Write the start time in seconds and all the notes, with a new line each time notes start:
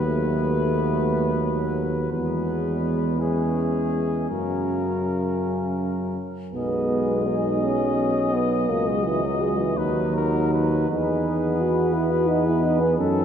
Already playing: D#2 B3 B4
0.06 F#3 A3
2.11 E2 G#3 B3 B4
3.18 E3 C#4 G#4
4.30 F#2 C#3 F#3 A#4
6.53 B1 G#3 B3 G#4 D#5
7.26 D#4
7.63 F#3 C#4
8.33 B3
8.69 C#2 A#3 F#4
8.87 G#3
9.04 E3
9.23 F#3
9.42 G#3
9.60 E3
9.77 D#2 F#3 D#4 F#4 B4
10.16 A#4
10.53 B4
10.90 E2 B3 D#4 G#4 B4
11.60 F#4
11.94 E4
12.11 F#4
12.27 D#4
12.46 E4
12.63 D#4
12.80 B3
12.97 F#2 C#4 D#4 A4